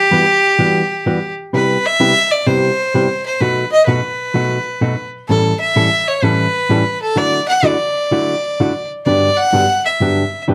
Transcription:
Already playing: G4
0.11 E3 G3 B3 F#4
0.59 E3 G3 B3 F#4
1.06 E3 G3 B3 F#4
1.53 C3 G3 B3 E4 G4 B4
1.86 E5
2.00 C3 G3 B3 E4 G4
2.31 D5
2.47 C3 G3 B3 E4 G4 C5
2.94 C3 G3 B3 E4 G4
3.26 C5
3.41 B2 F#3 A3 D#4 F#4 B4
3.72 D#5
3.86 B2 F#3 A3 D#4 F#4 B4
4.34 B2 F#3 A3 D#4 F#4
4.81 B2 F#3 A3 D#4 F#4
5.29 A2 E3 G3 C#4 E4 A4
5.60 E5
5.76 A2 E3 G3 C#4 E4 A4
6.08 C#5
6.23 A2 E3 G3 C#4 E4 A4 B4
6.69 A2 E3 G3 C#4 E4 A4
7.02 A4
7.16 D3 F#3 A3 E4 F#4 D5
7.48 F#5
7.63 D3 F#3 A3 E4 F#4 D5
8.11 D3 F#3 A3 E4 F#4
8.60 D3 F#3 A3 E4 F#4
9.06 G2 D3 F#3 B3 D4 G4 D5
9.37 F#5
9.53 G2 D3 F#3 B3 D4 G4
9.85 E5
10.00 G2 D3 F#3 B3 D4 G4
10.48 G2 D3 F#3 B3 D4 G4

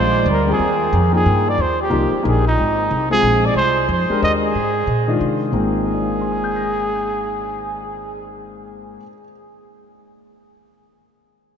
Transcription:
Already playing: A#1 G#3 C5
0.26 D2 G3
0.31 A#4
0.47 D#3 G3 C4 F4 G#4
0.52 G#4
0.59 D#2
0.93 F2
1.13 F3 A#3 D#4 G#4 G5
1.26 G2
1.49 D5
1.58 D#2 C5
1.81 G4
1.90 C2 F3 A#3 D#4 G4
2.13 muted upright bass stroke
2.23 A#1 F3 A#3 D#4 G4
2.27 G#4
2.47 D#4
2.58 G#1
2.91 C2
3.10 G#3 C4 F4 G#4
3.22 A#1
3.46 D5
3.55 C2 C5
3.89 F2 C5
4.10 G#3 D4 G4 A#4, muted upright bass stroke
4.22 D#2 D#5
4.43 G#4
4.55 G#2
4.87 A#2
5.08 D#3 G#3 D4 F4
5.21 C3
5.52 G#1 G#2 D#3 A#3 C4 G#4 G5
5.86 A#4
5.94 D5
6.02 F5
6.12 G#5
6.21 C6
6.32 D#6
6.44 G6
6.56 A#6

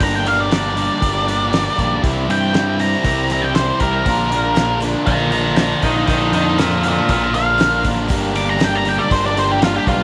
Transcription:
0.00 G1 G2 D3 G3 A#3 D4 G4 A#4 A#5, kick, open hi-hat
0.15 G5
0.24 G2 D3 G3 A#3 D4 G4 A#4 F5, open hi-hat
0.40 D5
0.49 G2 D3 G3 A#3 D4 G4 A#4, snare, open hi-hat
0.54 D5
0.74 G2 D3 G3 A#3 D4 G4 A#4, open hi-hat
0.99 G1 G2 D3 G3 A#3 D4 G4 A#4, kick, open hi-hat
1.24 G2 D3 G3 A#3 D4 G4 A#4
1.28 open hi-hat
1.49 G2 D3 G3 A#3 D4 G4 A#4, open hi-hat
1.54 snare
1.74 G2 D3 G3 A#3 D4 A#4
1.78 A#1 G4, kick, open hi-hat
2.01 C2 C3 E3 G3 C4 E4 G4, kick, open hi-hat
2.28 G2 C3 E3 G3 C4 E4 G4 G5, open hi-hat
2.53 C3 E3 G3 C4 E4 G4, snare, open hi-hat
2.79 C3 E3 G3 C4 E4 G4 A#5, open hi-hat
3.03 C2 C3 E3 G3 C4 E4 G4, kick, open hi-hat
3.30 C3 E3 G3 C4 E4 G4 A#5, open hi-hat
3.42 G5
3.55 C3 E3 G3 C4 E4 G4 C5, snare, open hi-hat
3.80 C2 C3 E3 G3 C4 G4 A#4, kick, open hi-hat
3.84 E4
4.06 A#1 A#2 D3 F3 A#3 D4 F4 A#4, kick, open hi-hat
4.10 A#4
4.31 A#2 D3 F3 A#3 D4 F4, open hi-hat
4.35 A#3 D4 A#4
4.56 A#2 D3 F3 A#3 F4 A#4, snare, open hi-hat
4.60 D4 A#4
4.80 A#2 F3 F4, open hi-hat
4.84 D3 F3 A#3 D4 A#4
4.92 F3 A#3 D4 A#4
5.06 A#1 A#2 D3 F3 F4 G5 A#5, kick, open hi-hat
5.10 A#3 D4 A#4
5.18 F3 A#3 D4 A#4
5.30 F3 A#3 D4 F4 G5 A#5, open hi-hat
5.34 A#2 D3 F3 A#3 D4 A#4
5.56 A#2 D3 F3 A#3 D4 G5 A#5, snare, open hi-hat
5.61 F4 A#4
5.82 A#1 A#2 D3 F3 A#3 D4 F4 A#4 G5, kick, open hi-hat
5.87 A#4
5.96 F3 A#3 D4
6.07 A#1 A#2 D3 F3 A#3 D4 F4 A#4 G5, kick, open hi-hat
6.11 A#4
6.32 F2 A#2 D3 F3 A#3 A#4 G5, open hi-hat
6.36 D4 F4 A#4
6.59 A#2 D3 F3 A#3 D4 F4 A#4 D5 F5, snare, open hi-hat
6.83 A#2 D3 F3 A#3 D4 F4, open hi-hat
6.88 A#4 D5 F5
6.96 F3 A#3 D4 A#4
7.09 A#1 A#2 D3 F3 A#3 D4 F4 A#4 D5 F5, kick, open hi-hat
7.20 F3 A#3 D4 A#4
7.33 A#2 D3 F3 A#3 D4 F4 A#4 F5, open hi-hat
7.59 A#2 D3 F3 A#3 D4 F4 A#4, snare, open hi-hat
7.83 A1 A#2 D3 F3 A#3 D4 F4 A#4, kick, open hi-hat
7.94 F3 A#3 D4 A#4
8.07 G1 G2 D3 G3 A#3 D4 G4 A#4, kick, open hi-hat
8.34 G2 D3 G3 A#3 D4 G4 A#4 D6, open hi-hat
8.50 A#5
8.60 G2 D3 G3 A#3 D4 G4 A#4, snare, open hi-hat
8.64 G5
8.75 A#5
8.85 G2 D3 G3 A#3 D4 G4 A#4 G5, open hi-hat
8.98 G3 A#3 D4 G4 D5
9.10 G1 G2 D3 G3 A#3 D4 G4 A#4 C5, kick, open hi-hat
9.25 G3 A#3 D4 G4 D5
9.36 G2 D3 G3 A#3 D4 G4 A#4 C5, open hi-hat
9.41 G4
9.52 G4
9.60 G2 D3 G3 A#3 D4 F4 G4 A#4, snare, open hi-hat
9.64 G2 D3 G3 D4 G4
9.76 G4
9.85 B1 G2 D3 G3 A#3 D4 F4 G4 A#4, kick, open hi-hat
9.90 G4

